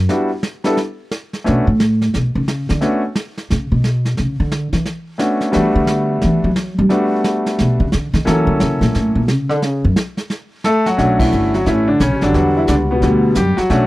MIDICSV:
0, 0, Header, 1, 5, 480
1, 0, Start_track
1, 0, Key_signature, 2, "minor"
1, 0, Tempo, 340329
1, 123, Time_signature, 4, 2, 24, 8
1, 19558, End_track
2, 0, Start_track
2, 0, Title_t, "Grand piano"
2, 0, Program_c, 0, 0
2, 125, Note_on_c, 0, 55, 56
2, 126, Note_on_c, 0, 59, 49
2, 132, Note_on_c, 0, 62, 51
2, 134, Note_on_c, 0, 64, 53
2, 139, Note_on_c, 0, 66, 64
2, 397, Note_off_c, 0, 55, 0
2, 398, Note_off_c, 0, 59, 0
2, 401, Note_off_c, 0, 62, 0
2, 402, Note_off_c, 0, 64, 0
2, 404, Note_off_c, 0, 66, 0
2, 902, Note_on_c, 0, 55, 61
2, 908, Note_on_c, 0, 59, 60
2, 914, Note_on_c, 0, 62, 55
2, 920, Note_on_c, 0, 64, 60
2, 927, Note_on_c, 0, 69, 70
2, 1064, Note_off_c, 0, 55, 0
2, 1067, Note_off_c, 0, 59, 0
2, 1070, Note_off_c, 0, 62, 0
2, 1073, Note_off_c, 0, 64, 0
2, 1077, Note_off_c, 0, 69, 0
2, 2037, Note_on_c, 0, 57, 59
2, 2045, Note_on_c, 0, 59, 56
2, 2047, Note_on_c, 0, 61, 51
2, 2060, Note_on_c, 0, 62, 53
2, 2066, Note_on_c, 0, 66, 62
2, 2314, Note_off_c, 0, 57, 0
2, 2318, Note_off_c, 0, 59, 0
2, 2319, Note_off_c, 0, 61, 0
2, 2326, Note_off_c, 0, 62, 0
2, 2329, Note_off_c, 0, 66, 0
2, 3962, Note_on_c, 0, 57, 57
2, 3969, Note_on_c, 0, 59, 56
2, 3971, Note_on_c, 0, 61, 57
2, 3978, Note_on_c, 0, 62, 53
2, 3986, Note_on_c, 0, 66, 64
2, 4237, Note_off_c, 0, 57, 0
2, 4241, Note_off_c, 0, 59, 0
2, 4242, Note_off_c, 0, 61, 0
2, 4245, Note_off_c, 0, 62, 0
2, 4249, Note_off_c, 0, 66, 0
2, 7307, Note_on_c, 0, 57, 53
2, 7314, Note_on_c, 0, 59, 47
2, 7318, Note_on_c, 0, 61, 47
2, 7319, Note_on_c, 0, 62, 48
2, 7327, Note_on_c, 0, 66, 58
2, 7773, Note_off_c, 0, 59, 0
2, 7775, Note_off_c, 0, 57, 0
2, 7781, Note_off_c, 0, 62, 0
2, 7783, Note_on_c, 0, 55, 72
2, 7788, Note_off_c, 0, 66, 0
2, 7794, Note_on_c, 0, 59, 64
2, 7796, Note_on_c, 0, 57, 68
2, 7802, Note_off_c, 0, 61, 0
2, 7802, Note_on_c, 0, 62, 62
2, 7809, Note_on_c, 0, 66, 75
2, 9128, Note_off_c, 0, 55, 0
2, 9133, Note_off_c, 0, 59, 0
2, 9134, Note_off_c, 0, 57, 0
2, 9137, Note_off_c, 0, 62, 0
2, 9141, Note_off_c, 0, 66, 0
2, 9721, Note_on_c, 0, 55, 65
2, 9728, Note_on_c, 0, 57, 60
2, 9733, Note_on_c, 0, 59, 60
2, 9736, Note_on_c, 0, 62, 60
2, 9739, Note_on_c, 0, 66, 68
2, 11055, Note_off_c, 0, 55, 0
2, 11059, Note_off_c, 0, 57, 0
2, 11062, Note_off_c, 0, 59, 0
2, 11063, Note_off_c, 0, 62, 0
2, 11065, Note_off_c, 0, 66, 0
2, 11636, Note_on_c, 0, 58, 59
2, 11637, Note_on_c, 0, 54, 66
2, 11642, Note_on_c, 0, 61, 61
2, 11650, Note_on_c, 0, 64, 55
2, 11659, Note_on_c, 0, 69, 71
2, 12972, Note_off_c, 0, 54, 0
2, 12972, Note_off_c, 0, 58, 0
2, 12974, Note_off_c, 0, 61, 0
2, 12979, Note_off_c, 0, 64, 0
2, 12983, Note_off_c, 0, 69, 0
2, 15020, Note_on_c, 0, 69, 94
2, 15037, Note_on_c, 0, 57, 76
2, 15301, Note_off_c, 0, 57, 0
2, 15322, Note_off_c, 0, 69, 0
2, 15322, Note_on_c, 0, 66, 90
2, 15329, Note_on_c, 0, 54, 70
2, 15474, Note_on_c, 0, 57, 65
2, 15478, Note_off_c, 0, 66, 0
2, 15482, Note_off_c, 0, 54, 0
2, 15482, Note_on_c, 0, 61, 60
2, 15493, Note_on_c, 0, 62, 62
2, 15501, Note_on_c, 0, 66, 78
2, 15505, Note_on_c, 0, 54, 61
2, 15773, Note_off_c, 0, 57, 0
2, 15775, Note_off_c, 0, 54, 0
2, 15787, Note_on_c, 0, 64, 85
2, 15792, Note_on_c, 0, 52, 61
2, 15794, Note_on_c, 0, 57, 59
2, 16234, Note_off_c, 0, 52, 0
2, 16236, Note_off_c, 0, 57, 0
2, 16260, Note_off_c, 0, 66, 0
2, 16280, Note_off_c, 0, 64, 0
2, 16281, Note_on_c, 0, 66, 75
2, 16286, Note_on_c, 0, 54, 67
2, 16440, Note_off_c, 0, 54, 0
2, 16443, Note_off_c, 0, 61, 0
2, 16451, Note_on_c, 0, 64, 84
2, 16454, Note_off_c, 0, 66, 0
2, 16463, Note_on_c, 0, 57, 62
2, 16464, Note_on_c, 0, 61, 61
2, 16469, Note_on_c, 0, 52, 60
2, 16728, Note_off_c, 0, 64, 0
2, 16730, Note_off_c, 0, 62, 0
2, 16735, Note_off_c, 0, 57, 0
2, 16735, Note_off_c, 0, 61, 0
2, 16738, Note_off_c, 0, 52, 0
2, 16751, Note_on_c, 0, 62, 76
2, 16767, Note_on_c, 0, 50, 62
2, 16912, Note_off_c, 0, 62, 0
2, 16921, Note_off_c, 0, 50, 0
2, 16934, Note_on_c, 0, 61, 80
2, 16944, Note_on_c, 0, 49, 62
2, 17215, Note_off_c, 0, 49, 0
2, 17240, Note_off_c, 0, 61, 0
2, 17241, Note_on_c, 0, 62, 84
2, 17247, Note_on_c, 0, 50, 60
2, 17247, Note_on_c, 0, 54, 61
2, 17253, Note_on_c, 0, 55, 58
2, 17376, Note_off_c, 0, 55, 0
2, 17397, Note_off_c, 0, 62, 0
2, 17397, Note_on_c, 0, 55, 65
2, 17406, Note_on_c, 0, 59, 59
2, 17418, Note_on_c, 0, 62, 59
2, 17418, Note_on_c, 0, 66, 73
2, 17684, Note_off_c, 0, 50, 0
2, 17684, Note_off_c, 0, 54, 0
2, 17729, Note_on_c, 0, 64, 79
2, 17749, Note_on_c, 0, 52, 64
2, 17800, Note_off_c, 0, 64, 0
2, 17819, Note_off_c, 0, 52, 0
2, 17868, Note_off_c, 0, 62, 0
2, 17889, Note_on_c, 0, 62, 80
2, 17905, Note_on_c, 0, 50, 68
2, 17959, Note_off_c, 0, 62, 0
2, 17975, Note_off_c, 0, 50, 0
2, 18186, Note_off_c, 0, 59, 0
2, 18207, Note_on_c, 0, 59, 75
2, 18222, Note_on_c, 0, 47, 58
2, 18354, Note_off_c, 0, 59, 0
2, 18361, Note_off_c, 0, 47, 0
2, 18363, Note_off_c, 0, 55, 0
2, 18375, Note_on_c, 0, 59, 85
2, 18382, Note_on_c, 0, 47, 58
2, 18382, Note_on_c, 0, 50, 62
2, 18384, Note_on_c, 0, 55, 59
2, 18746, Note_off_c, 0, 66, 0
2, 18821, Note_off_c, 0, 47, 0
2, 18821, Note_off_c, 0, 50, 0
2, 18822, Note_off_c, 0, 55, 0
2, 18855, Note_on_c, 0, 67, 89
2, 18864, Note_off_c, 0, 59, 0
2, 18875, Note_on_c, 0, 55, 69
2, 19132, Note_off_c, 0, 67, 0
2, 19140, Note_on_c, 0, 66, 87
2, 19143, Note_off_c, 0, 55, 0
2, 19152, Note_on_c, 0, 54, 64
2, 19311, Note_off_c, 0, 66, 0
2, 19315, Note_off_c, 0, 54, 0
2, 19322, Note_on_c, 0, 57, 74
2, 19325, Note_on_c, 0, 61, 67
2, 19332, Note_on_c, 0, 66, 87
2, 19339, Note_on_c, 0, 62, 67
2, 19350, Note_on_c, 0, 54, 66
2, 19558, Note_off_c, 0, 54, 0
2, 19558, Note_off_c, 0, 57, 0
2, 19558, Note_off_c, 0, 61, 0
2, 19558, Note_off_c, 0, 62, 0
2, 19558, Note_off_c, 0, 66, 0
2, 19558, End_track
3, 0, Start_track
3, 0, Title_t, "Upright bass"
3, 0, Program_c, 1, 32
3, 2091, Note_on_c, 1, 47, 72
3, 2350, Note_off_c, 1, 47, 0
3, 2358, Note_on_c, 1, 45, 85
3, 2965, Note_off_c, 1, 45, 0
3, 3039, Note_on_c, 1, 47, 82
3, 3311, Note_off_c, 1, 47, 0
3, 3320, Note_on_c, 1, 49, 87
3, 3762, Note_off_c, 1, 49, 0
3, 3813, Note_on_c, 1, 50, 96
3, 3974, Note_off_c, 1, 50, 0
3, 4960, Note_on_c, 1, 49, 80
3, 5233, Note_off_c, 1, 49, 0
3, 5241, Note_on_c, 1, 47, 85
3, 5847, Note_off_c, 1, 47, 0
3, 5913, Note_on_c, 1, 49, 77
3, 6195, Note_off_c, 1, 49, 0
3, 6203, Note_on_c, 1, 50, 92
3, 6644, Note_off_c, 1, 50, 0
3, 6666, Note_on_c, 1, 52, 92
3, 6840, Note_off_c, 1, 52, 0
3, 7838, Note_on_c, 1, 52, 75
3, 8107, Note_off_c, 1, 52, 0
3, 8115, Note_on_c, 1, 50, 94
3, 8723, Note_off_c, 1, 50, 0
3, 8802, Note_on_c, 1, 52, 86
3, 9078, Note_off_c, 1, 52, 0
3, 9084, Note_on_c, 1, 54, 87
3, 9523, Note_off_c, 1, 54, 0
3, 9570, Note_on_c, 1, 55, 101
3, 9670, Note_off_c, 1, 55, 0
3, 10727, Note_on_c, 1, 47, 78
3, 10992, Note_off_c, 1, 47, 0
3, 11000, Note_on_c, 1, 49, 94
3, 11165, Note_off_c, 1, 49, 0
3, 11199, Note_on_c, 1, 50, 79
3, 11466, Note_off_c, 1, 50, 0
3, 11474, Note_on_c, 1, 51, 96
3, 11642, Note_off_c, 1, 51, 0
3, 11667, Note_on_c, 1, 52, 102
3, 11936, Note_off_c, 1, 52, 0
3, 11945, Note_on_c, 1, 50, 97
3, 12117, Note_off_c, 1, 50, 0
3, 12152, Note_on_c, 1, 49, 87
3, 12418, Note_off_c, 1, 49, 0
3, 12426, Note_on_c, 1, 46, 91
3, 12597, Note_off_c, 1, 46, 0
3, 12629, Note_on_c, 1, 45, 75
3, 12901, Note_off_c, 1, 45, 0
3, 12910, Note_on_c, 1, 46, 89
3, 13114, Note_off_c, 1, 46, 0
3, 13114, Note_on_c, 1, 49, 88
3, 13387, Note_off_c, 1, 49, 0
3, 13387, Note_on_c, 1, 50, 106
3, 13599, Note_off_c, 1, 50, 0
3, 13599, Note_on_c, 1, 49, 82
3, 13874, Note_off_c, 1, 49, 0
3, 13886, Note_on_c, 1, 42, 97
3, 13985, Note_off_c, 1, 42, 0
3, 15494, Note_on_c, 1, 35, 79
3, 15953, Note_off_c, 1, 35, 0
3, 15967, Note_on_c, 1, 31, 83
3, 16430, Note_off_c, 1, 31, 0
3, 16450, Note_on_c, 1, 33, 80
3, 16911, Note_off_c, 1, 33, 0
3, 16929, Note_on_c, 1, 35, 90
3, 17087, Note_off_c, 1, 35, 0
3, 17087, Note_on_c, 1, 33, 56
3, 17228, Note_off_c, 1, 33, 0
3, 17237, Note_on_c, 1, 30, 67
3, 17388, Note_off_c, 1, 30, 0
3, 17409, Note_on_c, 1, 40, 82
3, 17872, Note_off_c, 1, 40, 0
3, 17886, Note_on_c, 1, 37, 85
3, 18351, Note_off_c, 1, 37, 0
3, 18365, Note_on_c, 1, 38, 78
3, 18831, Note_off_c, 1, 38, 0
3, 18842, Note_on_c, 1, 42, 89
3, 19125, Note_off_c, 1, 42, 0
3, 19319, Note_on_c, 1, 47, 84
3, 19558, Note_off_c, 1, 47, 0
3, 19558, End_track
4, 0, Start_track
4, 0, Title_t, "Muted upright bass strokes"
4, 19156, Note_on_c, 9, 29, 39
4, 19297, Note_off_c, 9, 29, 0
4, 19558, End_track
5, 0, Start_track
5, 0, Title_t, "Drums"
5, 125, Note_on_c, 9, 25, 49
5, 125, Note_on_c, 9, 38, 49
5, 266, Note_off_c, 9, 38, 0
5, 605, Note_on_c, 9, 38, 69
5, 746, Note_off_c, 9, 38, 0
5, 904, Note_on_c, 9, 38, 47
5, 1045, Note_off_c, 9, 38, 0
5, 1086, Note_off_c, 9, 25, 0
5, 1086, Note_on_c, 9, 25, 50
5, 1086, Note_on_c, 9, 38, 52
5, 1227, Note_off_c, 9, 38, 0
5, 1571, Note_on_c, 9, 38, 67
5, 1712, Note_off_c, 9, 38, 0
5, 1880, Note_on_c, 9, 38, 44
5, 2021, Note_off_c, 9, 38, 0
5, 2062, Note_off_c, 9, 25, 0
5, 2062, Note_on_c, 9, 25, 49
5, 2062, Note_on_c, 9, 38, 45
5, 2203, Note_off_c, 9, 38, 0
5, 2537, Note_on_c, 9, 38, 74
5, 2678, Note_off_c, 9, 38, 0
5, 2842, Note_on_c, 9, 38, 46
5, 2983, Note_off_c, 9, 38, 0
5, 3015, Note_off_c, 9, 25, 0
5, 3015, Note_on_c, 9, 25, 57
5, 3015, Note_on_c, 9, 38, 52
5, 3156, Note_off_c, 9, 38, 0
5, 3497, Note_on_c, 9, 38, 70
5, 3638, Note_off_c, 9, 38, 0
5, 3795, Note_on_c, 9, 38, 45
5, 3936, Note_off_c, 9, 38, 0
5, 3968, Note_off_c, 9, 25, 0
5, 3968, Note_on_c, 9, 25, 47
5, 3968, Note_on_c, 9, 38, 49
5, 4109, Note_off_c, 9, 38, 0
5, 4450, Note_on_c, 9, 38, 73
5, 4591, Note_off_c, 9, 38, 0
5, 4760, Note_on_c, 9, 38, 47
5, 4901, Note_off_c, 9, 38, 0
5, 4941, Note_off_c, 9, 25, 0
5, 4941, Note_on_c, 9, 25, 52
5, 4941, Note_on_c, 9, 38, 53
5, 5082, Note_off_c, 9, 38, 0
5, 5414, Note_on_c, 9, 38, 68
5, 5555, Note_off_c, 9, 38, 0
5, 5716, Note_on_c, 9, 38, 44
5, 5857, Note_off_c, 9, 38, 0
5, 5885, Note_off_c, 9, 25, 0
5, 5885, Note_on_c, 9, 25, 50
5, 5885, Note_on_c, 9, 38, 47
5, 6026, Note_off_c, 9, 38, 0
5, 6369, Note_on_c, 9, 38, 69
5, 6510, Note_off_c, 9, 38, 0
5, 6668, Note_on_c, 9, 38, 46
5, 6809, Note_off_c, 9, 38, 0
5, 6847, Note_off_c, 9, 25, 0
5, 6847, Note_on_c, 9, 25, 51
5, 6847, Note_on_c, 9, 38, 50
5, 6988, Note_off_c, 9, 38, 0
5, 7324, Note_on_c, 9, 38, 65
5, 7465, Note_off_c, 9, 38, 0
5, 7625, Note_on_c, 9, 38, 42
5, 7766, Note_off_c, 9, 38, 0
5, 7798, Note_off_c, 9, 25, 0
5, 7798, Note_on_c, 9, 25, 49
5, 7798, Note_on_c, 9, 38, 49
5, 7939, Note_off_c, 9, 38, 0
5, 8281, Note_on_c, 9, 38, 75
5, 8422, Note_off_c, 9, 38, 0
5, 8765, Note_off_c, 9, 25, 0
5, 8765, Note_on_c, 9, 25, 53
5, 8765, Note_on_c, 9, 38, 52
5, 8906, Note_off_c, 9, 38, 0
5, 9250, Note_on_c, 9, 38, 68
5, 9391, Note_off_c, 9, 38, 0
5, 9731, Note_off_c, 9, 25, 0
5, 9731, Note_on_c, 9, 25, 46
5, 9731, Note_on_c, 9, 38, 48
5, 9872, Note_off_c, 9, 38, 0
5, 10215, Note_on_c, 9, 38, 75
5, 10356, Note_off_c, 9, 38, 0
5, 10524, Note_on_c, 9, 38, 49
5, 10665, Note_off_c, 9, 38, 0
5, 10697, Note_off_c, 9, 25, 0
5, 10697, Note_on_c, 9, 25, 52
5, 10697, Note_on_c, 9, 38, 54
5, 10839, Note_off_c, 9, 38, 0
5, 11171, Note_on_c, 9, 38, 72
5, 11312, Note_off_c, 9, 38, 0
5, 11478, Note_on_c, 9, 38, 44
5, 11619, Note_off_c, 9, 38, 0
5, 11661, Note_off_c, 9, 25, 0
5, 11661, Note_on_c, 9, 25, 47
5, 11661, Note_on_c, 9, 38, 52
5, 11802, Note_off_c, 9, 38, 0
5, 12131, Note_on_c, 9, 38, 78
5, 12272, Note_off_c, 9, 38, 0
5, 12435, Note_on_c, 9, 38, 49
5, 12576, Note_off_c, 9, 38, 0
5, 12615, Note_off_c, 9, 25, 0
5, 12615, Note_on_c, 9, 25, 54
5, 12615, Note_on_c, 9, 38, 54
5, 12756, Note_off_c, 9, 38, 0
5, 13090, Note_on_c, 9, 38, 76
5, 13231, Note_off_c, 9, 38, 0
5, 13400, Note_on_c, 9, 38, 48
5, 13541, Note_off_c, 9, 38, 0
5, 13571, Note_off_c, 9, 25, 0
5, 13571, Note_on_c, 9, 25, 58
5, 13571, Note_on_c, 9, 38, 49
5, 13712, Note_off_c, 9, 38, 0
5, 14051, Note_on_c, 9, 38, 75
5, 14192, Note_off_c, 9, 38, 0
5, 14346, Note_on_c, 9, 38, 47
5, 14487, Note_off_c, 9, 38, 0
5, 14525, Note_off_c, 9, 25, 0
5, 14525, Note_on_c, 9, 25, 61
5, 14525, Note_on_c, 9, 38, 55
5, 14666, Note_off_c, 9, 38, 0
5, 15009, Note_on_c, 9, 38, 69
5, 15150, Note_off_c, 9, 38, 0
5, 15316, Note_on_c, 9, 38, 46
5, 15457, Note_off_c, 9, 38, 0
5, 15490, Note_on_c, 9, 36, 20
5, 15494, Note_off_c, 9, 25, 0
5, 15494, Note_on_c, 9, 25, 49
5, 15494, Note_on_c, 9, 38, 44
5, 15631, Note_off_c, 9, 36, 0
5, 15635, Note_off_c, 9, 38, 0
5, 15792, Note_on_c, 9, 36, 79
5, 15793, Note_on_c, 9, 49, 73
5, 15933, Note_off_c, 9, 36, 0
5, 15934, Note_off_c, 9, 49, 0
5, 15960, Note_on_c, 9, 44, 49
5, 16101, Note_off_c, 9, 44, 0
5, 16277, Note_on_c, 9, 38, 40
5, 16418, Note_off_c, 9, 38, 0
5, 16444, Note_off_c, 9, 25, 0
5, 16444, Note_on_c, 9, 25, 54
5, 16444, Note_on_c, 9, 38, 45
5, 16447, Note_on_c, 9, 36, 22
5, 16585, Note_off_c, 9, 38, 0
5, 16588, Note_off_c, 9, 36, 0
5, 16921, Note_on_c, 9, 44, 57
5, 16927, Note_on_c, 9, 36, 25
5, 16928, Note_on_c, 9, 38, 58
5, 17062, Note_off_c, 9, 44, 0
5, 17068, Note_off_c, 9, 36, 0
5, 17069, Note_off_c, 9, 38, 0
5, 17222, Note_on_c, 9, 38, 39
5, 17363, Note_off_c, 9, 38, 0
5, 17405, Note_off_c, 9, 25, 0
5, 17405, Note_on_c, 9, 25, 51
5, 17405, Note_on_c, 9, 38, 42
5, 17406, Note_on_c, 9, 36, 22
5, 17546, Note_off_c, 9, 38, 0
5, 17547, Note_off_c, 9, 36, 0
5, 17873, Note_on_c, 9, 44, 54
5, 17880, Note_on_c, 9, 38, 63
5, 17884, Note_on_c, 9, 36, 26
5, 18014, Note_off_c, 9, 44, 0
5, 18021, Note_off_c, 9, 38, 0
5, 18025, Note_off_c, 9, 36, 0
5, 18360, Note_off_c, 9, 25, 0
5, 18360, Note_on_c, 9, 25, 41
5, 18360, Note_on_c, 9, 38, 44
5, 18362, Note_on_c, 9, 36, 24
5, 18501, Note_off_c, 9, 38, 0
5, 18503, Note_off_c, 9, 36, 0
5, 18828, Note_on_c, 9, 44, 59
5, 18835, Note_on_c, 9, 38, 61
5, 18841, Note_on_c, 9, 36, 17
5, 18969, Note_off_c, 9, 44, 0
5, 18976, Note_off_c, 9, 38, 0
5, 18982, Note_off_c, 9, 36, 0
5, 19143, Note_on_c, 9, 38, 38
5, 19284, Note_off_c, 9, 38, 0
5, 19319, Note_off_c, 9, 25, 0
5, 19319, Note_on_c, 9, 25, 48
5, 19319, Note_on_c, 9, 38, 44
5, 19322, Note_on_c, 9, 36, 23
5, 19460, Note_off_c, 9, 38, 0
5, 19463, Note_off_c, 9, 36, 0
5, 19558, Note_off_c, 9, 25, 0
5, 19558, End_track
0, 0, End_of_file